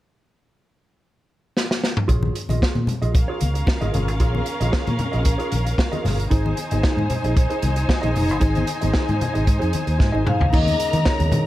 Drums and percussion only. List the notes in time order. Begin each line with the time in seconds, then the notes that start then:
1.57 snare
1.71 snare
1.83 snare
1.97 mid tom
2.09 kick, closed hi-hat, muted conga
2.23 high conga
2.35 closed hi-hat
2.49 closed hi-hat, high conga
2.62 kick, snare
2.75 high conga
2.87 closed hi-hat, muted conga, low conga
3.02 closed hi-hat
3.14 kick, closed hi-hat, muted conga
3.41 closed hi-hat, high conga
3.55 closed hi-hat
3.67 kick, snare, muted conga
3.81 closed hi-hat, high conga
3.94 closed hi-hat, low conga
4.08 closed hi-hat
4.20 kick, closed hi-hat, muted conga
4.35 high conga
4.46 closed hi-hat
4.61 closed hi-hat, high conga
4.73 kick, snare
4.87 closed hi-hat, high conga
4.99 closed hi-hat, low conga
5.13 closed hi-hat
5.25 kick, closed hi-hat
5.40 closed hi-hat
5.52 closed hi-hat, high conga
5.66 closed hi-hat
5.78 kick, snare, muted conga
5.92 closed hi-hat, high conga
6.05 snare, open hi-hat, low conga
6.20 closed hi-hat
6.31 kick, closed hi-hat
6.46 high conga
6.57 closed hi-hat, muted conga
6.71 closed hi-hat, high conga
6.83 kick, snare, muted conga
6.99 high conga
7.10 closed hi-hat, muted conga, low conga
7.24 closed hi-hat
7.37 kick, closed hi-hat
7.50 closed hi-hat
7.62 closed hi-hat, muted conga, high conga
7.76 closed hi-hat
7.89 kick, snare, muted conga
8.03 closed hi-hat, high conga
8.16 open hi-hat, muted conga, low conga
8.29 closed hi-hat
8.41 kick, closed hi-hat, muted conga
8.55 closed hi-hat, high conga
8.67 closed hi-hat
8.82 closed hi-hat, high conga
8.94 kick, snare
9.09 closed hi-hat, high conga
9.21 closed hi-hat, low conga
9.35 closed hi-hat
9.47 kick, closed hi-hat
9.62 closed hi-hat
9.73 closed hi-hat, muted conga, high conga
9.87 closed hi-hat
10.00 kick, snare, muted conga
10.15 high conga
10.27 mid tom, muted conga, high conga, low conga
10.41 floor tom
10.53 kick, crash, muted conga
10.66 closed hi-hat, high conga
10.80 closed hi-hat
10.93 closed hi-hat, high conga
11.05 kick, snare, muted conga
11.20 closed hi-hat, high conga
11.32 closed hi-hat, low conga